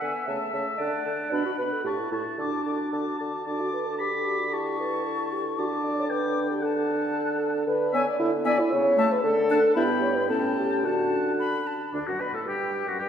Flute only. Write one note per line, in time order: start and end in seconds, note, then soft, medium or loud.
0.03 0.28 G#5 soft
0.28 0.52 A5 medium
0.53 0.79 A5 soft
0.80 1.04 A5 medium
1.05 1.31 A5 soft
1.33 1.58 B5 medium
1.59 1.85 B5 soft
1.86 2.12 C#6 soft
2.13 2.39 C#6 soft
2.40 2.64 D6 soft
2.64 2.92 D6 soft
2.92 3.19 D6 soft
3.19 3.45 D6 soft
3.46 3.96 D6 soft
3.99 4.55 D6 medium
4.53 5.60 C#6 medium
5.59 6.10 D6 medium
6.11 6.40 D6 medium
6.63 7.66 A5 medium
7.94 8.06 G#5 medium
8.45 8.57 G#5 medium
8.98 9.10 A5 medium
9.49 9.62 A5 medium
9.74 10.25 B5 medium
10.29 10.83 A5 medium
10.84 11.33 A5 medium
11.39 11.69 B5 medium
11.67 11.93 A5 medium
11.94 12.06 D5 soft
12.08 12.22 F#5 soft
12.21 12.34 B5 soft
12.35 12.41 A5 soft
12.47 12.90 G5 soft
12.89 13.01 F#5 soft
13.01 13.07 G5 soft